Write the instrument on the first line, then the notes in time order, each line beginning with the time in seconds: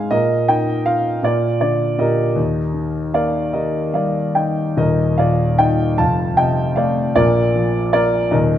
grand piano
Already playing: G#3 C4 D#4 C5 D#5 F5 G#5
0.11 A#2 A#4 D#5
0.48 D#4 G5
0.86 F4 F5
1.23 A#2 F4 A#4 D5
1.61 D3 D5
1.98 A#2 G4 A#4 D#5
2.36 D#2
2.74 D#3
3.14 A#3 A#4 D5 F5
3.53 D#3 G4 A#4 D#5
3.94 G3 D5 F5
4.35 D#3 D#5 G5
4.77 D#1 D#2 A#4 D#5
5.18 A#2 D5 F5
5.58 D#3 D#5 G5
5.98 F1 F2 F5 A5
6.37 C3 D#5 G5
6.76 A3 D5 F5
7.16 A#1 A#2 A#4 D5
7.55 F3
7.93 A#3 A#4 D5
8.31 D#1 D#2 A#4 D#5